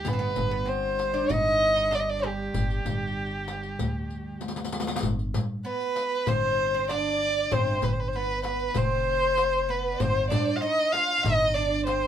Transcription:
0.05 0.35 G1 loud
0.05 5.09 G2 medium
0.05 0.13 B3 medium
0.05 0.70 B4 medium
0.05 riq medium
0.05 darbuka dum medium
0.13 0.20 C4 medium
0.19 0.50 B3 medium
0.36 1.26 G1 medium
0.36 riq medium
0.36 darbuka dum medium
0.51 0.68 B3 medium
0.66 1.13 C4 medium
0.66 1.33 C5 medium
0.66 riq soft
0.99 riq soft
0.99 darbuka tek medium
1.14 1.29 D4 medium
1.29 2.51 G1 medium
1.29 1.75 D#4 medium
1.29 1.96 D#5 loud
1.29 riq medium
1.29 darbuka dum medium
1.46 riq soft
1.46 darbuka ka soft
1.76 1.91 D#4 medium
1.91 2.24 D4 medium
1.91 2.01 D5 medium
1.91 riq soft
1.91 darbuka tek medium
2.00 2.10 D#5 medium
2.09 2.27 D5 medium
2.23 4.37 G3 medium
2.23 4.42 G4 medium
2.54 2.84 G1 medium
2.54 riq medium
2.54 darbuka dum medium
2.70 riq soft
2.70 darbuka ka soft
2.85 3.75 G1 medium
2.85 riq medium
2.85 darbuka dum medium
3.48 riq soft
3.48 darbuka tek medium
3.63 riq soft
3.79 4.99 D2 medium
3.79 riq medium
3.79 darbuka dum medium
3.95 darbuka ka soft
4.10 riq soft
4.10 darbuka ka soft
4.41 riq medium
4.41 darbuka tek soft
4.48 riq medium
4.48 darbuka ka medium
4.56 riq medium
4.56 darbuka tek medium
4.64 riq medium
4.64 darbuka ka medium
4.72 riq medium
4.72 darbuka tek medium
4.80 riq medium
4.80 darbuka ka medium
4.87 riq medium
4.87 darbuka tek medium
4.96 riq medium
4.96 darbuka ka medium
5.03 5.32 G1 medium
5.03 riq medium
5.03 darbuka dum medium
5.19 riq soft
5.19 darbuka ka soft
5.34 5.64 G2 medium
5.34 riq medium
5.34 darbuka dum medium
5.65 6.29 B3 medium
5.65 6.30 B4 medium
5.65 6.24 B4 medium
5.65 riq soft
5.80 riq soft
5.96 riq medium
6.12 riq soft
6.12 darbuka ka soft
6.27 7.48 G1 medium
6.27 6.73 C4 medium
6.27 6.89 C5 medium
6.27 6.90 C5 loud
6.27 riq medium
6.27 darbuka dum medium
6.74 6.90 C4 medium
6.89 7.52 D4 medium
6.89 7.52 D5 medium
6.89 7.54 D5 loud
6.89 riq medium
6.89 darbuka tek medium
7.51 7.81 G1 medium
7.51 7.81 C4 medium
7.51 7.85 C5 medium
7.51 7.84 C5 medium
7.51 riq medium
7.51 darbuka dum loud
7.67 riq soft
7.67 darbuka ka soft
7.82 8.72 G1 medium
7.82 7.94 B4 medium
7.82 riq medium
7.82 darbuka dum loud
7.93 8.01 C5 medium
8.00 8.09 B4 medium
8.08 8.17 C5 medium
8.13 8.78 B3 medium
8.13 8.44 B4 medium
8.13 8.43 B4 medium
8.13 riq soft
8.29 riq soft
8.43 8.79 B4 medium
8.43 8.74 B4 medium
8.43 riq soft
8.43 darbuka tek medium
8.59 riq soft
8.59 darbuka ka soft
8.74 9.96 F1 medium
8.74 9.72 C4 medium
8.74 9.61 C5 medium
8.74 9.72 C5 loud
8.74 riq medium
8.74 darbuka dum loud
8.92 darbuka ka soft
9.37 riq soft
9.37 darbuka tek medium
9.62 9.69 C5 medium
9.69 10.01 B3 medium
9.69 9.93 B4 medium
9.69 10.02 B4 medium
9.93 10.00 D5 medium
9.99 10.30 G1 medium
9.99 10.29 C4 medium
9.99 10.62 C5 medium
9.99 10.29 C5 loud
9.99 riq medium
9.99 darbuka dum medium
10.16 riq soft
10.30 10.61 G2 medium
10.30 10.56 D4 medium
10.30 10.57 D5 medium
10.30 riq medium
10.30 darbuka dum loud
10.56 10.61 F4 medium
10.56 10.62 F5 medium
10.61 10.92 D#4 medium
10.61 10.93 D#5 loud
10.61 10.93 D#5 medium
10.61 riq soft
10.78 riq soft
10.92 11.16 F4 medium
10.92 11.25 F5 medium
10.92 11.24 F5 medium
10.92 riq medium
10.92 darbuka tek medium
11.09 riq soft
11.09 darbuka ka soft
11.18 11.25 F4 medium
11.23 12.07 G1 medium
11.23 11.55 D#4 medium
11.23 11.56 D#5 loud
11.23 11.53 D#5 medium
11.23 riq medium
11.23 darbuka dum loud
11.41 darbuka ka soft
11.54 11.86 D4 medium
11.54 11.86 D5 medium
11.54 11.87 D5 medium
11.86 12.07 C4 medium
11.86 12.07 C5 medium
11.86 riq soft
11.86 darbuka tek medium

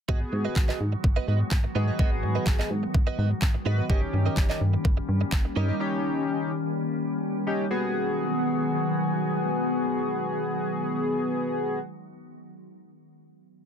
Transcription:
0.08 0.24 G#1 loud
0.08 7.66 D#3 medium
0.08 3.86 F#3 medium
0.08 3.86 G#3 medium
0.08 0.25 B3 medium
0.08 0.80 B3 medium
0.08 3.86 B3 medium
0.08 3.86 F#4 medium
0.08 0.80 F#4 medium
0.08 0.21 F#4 medium
0.08 0.80 G#4 medium
0.08 0.20 B4 loud
0.08 0.20 D#5 loud
0.08 kick loud
0.21 muted clean electric guitar stroke soft
0.32 0.48 G#2 loud
0.32 muted clean electric guitar stroke soft
0.45 0.55 B3 soft
0.45 0.55 F#4 medium
0.45 0.55 B4 medium
0.45 0.56 D#5 medium
0.56 0.72 G#1 loud
0.56 muted clean electric guitar stroke soft
0.56 kick loud
0.56 clap loud
0.69 0.79 B3 medium
0.69 0.79 F#4 medium
0.69 0.79 B4 medium
0.69 0.79 D#5 medium
0.69 clap medium
0.80 0.96 G#2 medium
0.80 muted clean electric guitar stroke soft
0.92 muted clean electric guitar stroke soft
1.04 1.19 G#1 loud
1.04 muted clean electric guitar stroke soft
1.04 kick loud
1.16 1.26 B3 medium
1.16 1.27 F#4 medium
1.16 1.27 B4 medium
1.16 1.27 D#5 medium
1.27 1.43 G#2 loud
1.27 1.40 B3 medium
1.27 1.40 F#4 medium
1.27 1.39 B4 medium
1.27 1.39 D#5 medium
1.40 muted clean electric guitar stroke soft
1.51 1.67 G#1 medium
1.51 muted clean electric guitar stroke soft
1.51 kick loud
1.51 clap loud
1.64 muted clean electric guitar stroke soft
1.75 1.91 G#2 medium
1.75 1.93 B3 medium
1.75 1.88 B3 medium
1.75 1.94 F#4 medium
1.75 1.87 F#4 medium
1.75 1.94 G#4 medium
1.75 1.87 B4 medium
1.75 1.86 D#5 medium
1.88 1.98 B3 medium
1.88 1.98 F#4 medium
1.88 1.98 B4 medium
1.88 1.99 D#5 medium
1.99 2.24 G#1 loud
1.99 2.15 B3 medium
1.99 2.71 B3 medium
1.99 2.11 F#4 medium
1.99 2.71 F#4 medium
1.99 2.71 G#4 medium
1.99 2.11 B4 medium
1.99 2.10 D#5 loud
1.99 kick loud
2.12 muted clean electric guitar stroke soft
2.23 2.38 G#2 medium
2.23 muted clean electric guitar stroke soft
2.35 2.45 B3 medium
2.35 2.46 F#4 medium
2.35 2.46 B4 medium
2.35 2.46 D#5 medium
2.47 2.62 G#1 medium
2.47 kick loud
2.47 clap loud
2.59 2.69 B3 medium
2.59 2.69 F#4 medium
2.59 2.70 B4 medium
2.59 2.70 D#5 medium
2.59 clap medium
2.70 2.86 G#2 medium
2.70 muted clean electric guitar stroke soft
2.83 muted clean electric guitar stroke soft
2.94 3.10 G#1 medium
2.94 muted clean electric guitar stroke soft
2.94 kick loud
3.07 3.17 B3 medium
3.07 3.17 F#4 medium
3.07 3.17 B4 medium
3.07 3.18 D#5 medium
3.18 3.34 G#2 loud
3.18 3.31 B3 medium
3.18 3.30 F#4 medium
3.18 3.30 B4 medium
3.18 3.29 D#5 medium
3.31 muted clean electric guitar stroke soft
3.42 3.57 G#1 loud
3.42 muted clean electric guitar stroke soft
3.42 kick loud
3.42 clap loud
3.54 muted clean electric guitar stroke soft
3.65 3.81 G#2 loud
3.65 3.78 B3 medium
3.65 3.84 B3 medium
3.65 3.84 F#4 medium
3.65 3.78 F#4 medium
3.65 3.84 B4 medium
3.65 3.77 B4 medium
3.65 3.77 D#5 medium
3.78 3.89 B3 medium
3.78 3.89 F#4 medium
3.78 3.90 B4 medium
3.78 3.89 D#5 medium
3.89 4.05 G1 loud
3.89 7.67 G3 medium
3.89 7.67 A#3 medium
3.89 4.05 C#4 medium
3.89 7.67 C#4 medium
3.89 4.61 C#4 medium
3.89 4.61 D#4 medium
3.89 7.67 G4 medium
3.89 4.01 G4 medium
3.89 4.61 G4 medium
3.89 4.01 A#4 medium
3.89 4.01 D#5 medium
3.89 kick loud
4.02 muted clean electric guitar stroke medium
4.13 4.29 G2 medium
4.13 muted clean electric guitar stroke soft
4.26 4.36 C#4 medium
4.26 4.36 G4 medium
4.26 4.36 A#4 medium
4.26 4.37 D#5 medium
4.37 4.53 G1 loud
4.37 muted clean electric guitar stroke soft
4.37 kick loud
4.37 clap loud
4.49 4.60 C#4 medium
4.49 4.60 G4 medium
4.49 4.60 A#4 medium
4.49 4.60 D#5 medium
4.49 clap medium
4.61 4.76 G2 medium
4.61 muted clean electric guitar stroke soft
4.74 muted clean electric guitar stroke soft
4.85 5.00 G1 medium
4.85 muted clean electric guitar stroke soft
4.85 kick loud
4.97 muted clean electric guitar stroke soft
5.09 5.24 G2 medium
5.21 muted clean electric guitar stroke soft
5.32 5.48 G1 medium
5.32 muted clean electric guitar stroke soft
5.32 kick loud
5.32 clap loud
5.45 muted clean electric guitar stroke soft
5.56 5.72 G2 loud
5.56 5.68 C#4 medium
5.56 5.74 C#4 medium
5.56 5.74 D#4 medium
5.56 5.68 G4 medium
5.56 5.75 G4 medium
5.56 5.68 A#4 medium
5.56 5.67 D#5 medium
5.68 5.81 C#4 soft
5.68 5.81 G4 medium
5.68 5.80 A#4 medium
5.68 5.80 D#5 medium
5.80 6.51 C#4 medium
5.80 6.52 D#4 medium
5.80 6.52 G4 loud
7.47 7.65 C#4 medium
7.47 7.65 D#4 medium
7.47 7.65 G4 medium
7.71 11.79 D#3 medium
7.71 11.79 F#3 medium
7.71 11.79 G#3 medium
7.71 11.79 B3 medium
7.71 11.79 F#4 medium
7.71 11.79 G#4 medium

